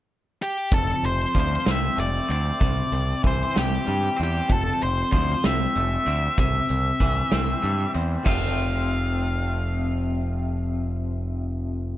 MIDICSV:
0, 0, Header, 1, 5, 480
1, 0, Start_track
1, 0, Key_signature, -1, "major"
1, 0, Tempo, 628931
1, 547, Time_signature, 6, 3, 24, 8
1, 9139, End_track
2, 0, Start_track
2, 0, Title_t, "Lead electric guitar"
2, 0, Program_c, 0, 29
2, 323, Note_on_c, 0, 67, 69
2, 539, Note_off_c, 0, 67, 0
2, 565, Note_on_c, 0, 69, 76
2, 803, Note_off_c, 0, 69, 0
2, 807, Note_on_c, 0, 72, 82
2, 1045, Note_off_c, 0, 72, 0
2, 1065, Note_on_c, 0, 72, 76
2, 1294, Note_off_c, 0, 72, 0
2, 1302, Note_on_c, 0, 76, 84
2, 1522, Note_off_c, 0, 76, 0
2, 1525, Note_on_c, 0, 74, 81
2, 1757, Note_off_c, 0, 74, 0
2, 1767, Note_on_c, 0, 74, 75
2, 2448, Note_off_c, 0, 74, 0
2, 2498, Note_on_c, 0, 72, 82
2, 2708, Note_off_c, 0, 72, 0
2, 2737, Note_on_c, 0, 67, 76
2, 3173, Note_off_c, 0, 67, 0
2, 3231, Note_on_c, 0, 67, 67
2, 3435, Note_off_c, 0, 67, 0
2, 3450, Note_on_c, 0, 69, 76
2, 3684, Note_off_c, 0, 69, 0
2, 3687, Note_on_c, 0, 72, 83
2, 3901, Note_off_c, 0, 72, 0
2, 3911, Note_on_c, 0, 72, 79
2, 4157, Note_off_c, 0, 72, 0
2, 4159, Note_on_c, 0, 76, 89
2, 4873, Note_off_c, 0, 76, 0
2, 4882, Note_on_c, 0, 76, 73
2, 6044, Note_off_c, 0, 76, 0
2, 6308, Note_on_c, 0, 77, 70
2, 9139, Note_off_c, 0, 77, 0
2, 9139, End_track
3, 0, Start_track
3, 0, Title_t, "Clean electric guitar"
3, 0, Program_c, 1, 27
3, 551, Note_on_c, 1, 41, 56
3, 1029, Note_on_c, 1, 53, 57
3, 1265, Note_on_c, 1, 60, 63
3, 1501, Note_on_c, 1, 57, 54
3, 1741, Note_off_c, 1, 60, 0
3, 1744, Note_on_c, 1, 60, 54
3, 1751, Note_off_c, 1, 41, 0
3, 1983, Note_on_c, 1, 48, 53
3, 1985, Note_off_c, 1, 57, 0
3, 1989, Note_off_c, 1, 53, 0
3, 2468, Note_on_c, 1, 52, 56
3, 2702, Note_off_c, 1, 60, 0
3, 2705, Note_on_c, 1, 60, 64
3, 2949, Note_on_c, 1, 55, 56
3, 3176, Note_off_c, 1, 60, 0
3, 3179, Note_on_c, 1, 60, 60
3, 3186, Note_off_c, 1, 48, 0
3, 3425, Note_on_c, 1, 41, 58
3, 3428, Note_off_c, 1, 52, 0
3, 3429, Note_off_c, 1, 55, 0
3, 3912, Note_on_c, 1, 53, 59
3, 4149, Note_off_c, 1, 60, 0
3, 4152, Note_on_c, 1, 60, 62
3, 4398, Note_on_c, 1, 57, 52
3, 4624, Note_off_c, 1, 60, 0
3, 4626, Note_off_c, 1, 41, 0
3, 4627, Note_on_c, 1, 60, 53
3, 4869, Note_off_c, 1, 53, 0
3, 4873, Note_off_c, 1, 57, 0
3, 4873, Note_on_c, 1, 48, 59
3, 5345, Note_on_c, 1, 52, 58
3, 5582, Note_off_c, 1, 60, 0
3, 5585, Note_on_c, 1, 60, 59
3, 5819, Note_on_c, 1, 55, 51
3, 6054, Note_off_c, 1, 60, 0
3, 6063, Note_on_c, 1, 60, 60
3, 6069, Note_off_c, 1, 48, 0
3, 6284, Note_on_c, 1, 41, 67
3, 6295, Note_off_c, 1, 52, 0
3, 6295, Note_on_c, 1, 48, 74
3, 6298, Note_on_c, 1, 53, 74
3, 6302, Note_off_c, 1, 60, 0
3, 6303, Note_off_c, 1, 55, 0
3, 6307, Note_on_c, 1, 57, 83
3, 6311, Note_on_c, 1, 60, 80
3, 6319, Note_on_c, 1, 65, 77
3, 9139, Note_off_c, 1, 41, 0
3, 9139, Note_off_c, 1, 48, 0
3, 9139, Note_off_c, 1, 53, 0
3, 9139, Note_off_c, 1, 57, 0
3, 9139, Note_off_c, 1, 60, 0
3, 9139, Note_off_c, 1, 65, 0
3, 9139, End_track
4, 0, Start_track
4, 0, Title_t, "Picked electric bass"
4, 0, Program_c, 2, 34
4, 548, Note_on_c, 2, 29, 74
4, 706, Note_off_c, 2, 29, 0
4, 788, Note_on_c, 2, 29, 77
4, 946, Note_off_c, 2, 29, 0
4, 1033, Note_on_c, 2, 38, 73
4, 1190, Note_off_c, 2, 38, 0
4, 1274, Note_on_c, 2, 36, 70
4, 1431, Note_off_c, 2, 36, 0
4, 1510, Note_on_c, 2, 29, 75
4, 1668, Note_off_c, 2, 29, 0
4, 1752, Note_on_c, 2, 38, 78
4, 1909, Note_off_c, 2, 38, 0
4, 1989, Note_on_c, 2, 36, 74
4, 2148, Note_off_c, 2, 36, 0
4, 2229, Note_on_c, 2, 36, 80
4, 2388, Note_off_c, 2, 36, 0
4, 2472, Note_on_c, 2, 36, 74
4, 2629, Note_off_c, 2, 36, 0
4, 2721, Note_on_c, 2, 36, 73
4, 2875, Note_off_c, 2, 36, 0
4, 2959, Note_on_c, 2, 43, 73
4, 3114, Note_off_c, 2, 43, 0
4, 3203, Note_on_c, 2, 40, 81
4, 3357, Note_off_c, 2, 40, 0
4, 3434, Note_on_c, 2, 29, 77
4, 3591, Note_off_c, 2, 29, 0
4, 3683, Note_on_c, 2, 29, 78
4, 3836, Note_off_c, 2, 29, 0
4, 3915, Note_on_c, 2, 38, 73
4, 4071, Note_off_c, 2, 38, 0
4, 4160, Note_on_c, 2, 36, 71
4, 4314, Note_off_c, 2, 36, 0
4, 4396, Note_on_c, 2, 29, 77
4, 4552, Note_off_c, 2, 29, 0
4, 4630, Note_on_c, 2, 38, 78
4, 4788, Note_off_c, 2, 38, 0
4, 4873, Note_on_c, 2, 36, 71
4, 5030, Note_off_c, 2, 36, 0
4, 5114, Note_on_c, 2, 36, 76
4, 5270, Note_off_c, 2, 36, 0
4, 5346, Note_on_c, 2, 36, 77
4, 5505, Note_off_c, 2, 36, 0
4, 5591, Note_on_c, 2, 36, 71
4, 5748, Note_off_c, 2, 36, 0
4, 5828, Note_on_c, 2, 43, 82
4, 5986, Note_off_c, 2, 43, 0
4, 6069, Note_on_c, 2, 40, 75
4, 6226, Note_off_c, 2, 40, 0
4, 6306, Note_on_c, 2, 29, 77
4, 9139, Note_off_c, 2, 29, 0
4, 9139, End_track
5, 0, Start_track
5, 0, Title_t, "Drums"
5, 547, Note_on_c, 9, 42, 74
5, 548, Note_on_c, 9, 36, 98
5, 624, Note_off_c, 9, 42, 0
5, 625, Note_off_c, 9, 36, 0
5, 790, Note_on_c, 9, 42, 50
5, 866, Note_off_c, 9, 42, 0
5, 1029, Note_on_c, 9, 36, 64
5, 1030, Note_on_c, 9, 42, 53
5, 1105, Note_off_c, 9, 36, 0
5, 1106, Note_off_c, 9, 42, 0
5, 1269, Note_on_c, 9, 42, 71
5, 1270, Note_on_c, 9, 38, 100
5, 1345, Note_off_c, 9, 42, 0
5, 1346, Note_off_c, 9, 38, 0
5, 1514, Note_on_c, 9, 42, 54
5, 1590, Note_off_c, 9, 42, 0
5, 1750, Note_on_c, 9, 42, 60
5, 1826, Note_off_c, 9, 42, 0
5, 1991, Note_on_c, 9, 42, 77
5, 1992, Note_on_c, 9, 36, 86
5, 2067, Note_off_c, 9, 42, 0
5, 2068, Note_off_c, 9, 36, 0
5, 2229, Note_on_c, 9, 42, 54
5, 2305, Note_off_c, 9, 42, 0
5, 2471, Note_on_c, 9, 42, 54
5, 2473, Note_on_c, 9, 36, 69
5, 2548, Note_off_c, 9, 42, 0
5, 2549, Note_off_c, 9, 36, 0
5, 2718, Note_on_c, 9, 42, 77
5, 2719, Note_on_c, 9, 38, 90
5, 2794, Note_off_c, 9, 42, 0
5, 2796, Note_off_c, 9, 38, 0
5, 2956, Note_on_c, 9, 42, 49
5, 3032, Note_off_c, 9, 42, 0
5, 3196, Note_on_c, 9, 42, 53
5, 3272, Note_off_c, 9, 42, 0
5, 3427, Note_on_c, 9, 42, 69
5, 3432, Note_on_c, 9, 36, 89
5, 3504, Note_off_c, 9, 42, 0
5, 3508, Note_off_c, 9, 36, 0
5, 3668, Note_on_c, 9, 42, 51
5, 3744, Note_off_c, 9, 42, 0
5, 3911, Note_on_c, 9, 36, 69
5, 3911, Note_on_c, 9, 42, 54
5, 3987, Note_off_c, 9, 36, 0
5, 3988, Note_off_c, 9, 42, 0
5, 4150, Note_on_c, 9, 42, 71
5, 4151, Note_on_c, 9, 38, 96
5, 4226, Note_off_c, 9, 42, 0
5, 4228, Note_off_c, 9, 38, 0
5, 4390, Note_on_c, 9, 42, 54
5, 4467, Note_off_c, 9, 42, 0
5, 4629, Note_on_c, 9, 42, 51
5, 4705, Note_off_c, 9, 42, 0
5, 4869, Note_on_c, 9, 36, 95
5, 4871, Note_on_c, 9, 42, 72
5, 4945, Note_off_c, 9, 36, 0
5, 4947, Note_off_c, 9, 42, 0
5, 5103, Note_on_c, 9, 42, 51
5, 5180, Note_off_c, 9, 42, 0
5, 5345, Note_on_c, 9, 36, 68
5, 5346, Note_on_c, 9, 42, 59
5, 5421, Note_off_c, 9, 36, 0
5, 5422, Note_off_c, 9, 42, 0
5, 5582, Note_on_c, 9, 42, 73
5, 5583, Note_on_c, 9, 38, 88
5, 5658, Note_off_c, 9, 42, 0
5, 5660, Note_off_c, 9, 38, 0
5, 5826, Note_on_c, 9, 42, 54
5, 5902, Note_off_c, 9, 42, 0
5, 6062, Note_on_c, 9, 42, 58
5, 6138, Note_off_c, 9, 42, 0
5, 6301, Note_on_c, 9, 49, 75
5, 6304, Note_on_c, 9, 36, 86
5, 6377, Note_off_c, 9, 49, 0
5, 6380, Note_off_c, 9, 36, 0
5, 9139, End_track
0, 0, End_of_file